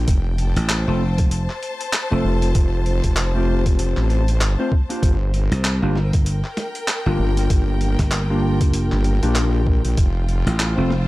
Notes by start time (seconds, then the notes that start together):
Already playing: G5
0.08 F1, kick, closed hi-hat
0.38 A5, closed hi-hat
0.56 A1, closed hi-hat
0.69 C5, clap, closed hi-hat
0.88 F1 A3 C4 F4 A4
1.18 kick, closed hi-hat
1.31 closed hi-hat
1.50 clap
1.63 closed hi-hat
1.81 closed hi-hat
1.93 clap, closed hi-hat
2.11 F1 A3 C4 F4 A4
2.24 F1
2.42 closed hi-hat
2.55 F1, kick, closed hi-hat
2.86 closed hi-hat
3.04 F1, kick, closed hi-hat
3.16 clap, closed hi-hat
3.35 A3 C4 F4 G4
3.66 kick, closed hi-hat
3.79 closed hi-hat
3.97 A1, clap
4.10 closed hi-hat
4.28 closed hi-hat
4.39 G#1, clap, closed hi-hat
4.59 A3 C4 F4 C5
4.72 kick
4.89 A#3 D4 F4 G4, closed hi-hat
5.03 G1, kick, closed hi-hat
5.26 A#4
5.34 closed hi-hat
5.51 C2, snare, closed hi-hat
5.65 clap, closed hi-hat
5.82 G1 A#3 D4 F4 G4
5.94 G5, snare
6.13 kick, closed hi-hat
6.26 closed hi-hat
6.44 clap
6.57 snare, closed hi-hat
6.75 closed hi-hat
6.88 clap, closed hi-hat
7.06 G1 A#3 D4 F4 G4
7.19 G1
7.37 closed hi-hat
7.50 G1, kick, closed hi-hat
7.81 closed hi-hat
7.99 G1, kick, snare, closed hi-hat
8.11 clap, closed hi-hat
8.30 A#3 D4 F4 G4
8.61 F#1, kick, closed hi-hat
8.73 closed hi-hat
8.92 G1, clap
9.04 closed hi-hat
9.23 A#1 A#3 D4 F4 G4, closed hi-hat
9.35 clap, closed hi-hat
9.67 kick
9.85 A#1, closed hi-hat
9.97 F1 F4, kick, closed hi-hat
10.29 closed hi-hat
10.46 A1, snare, closed hi-hat
10.60 clap, closed hi-hat
10.73 C5
10.77 F1 A3 C4 F4 A4
10.91 snare
11.02 A5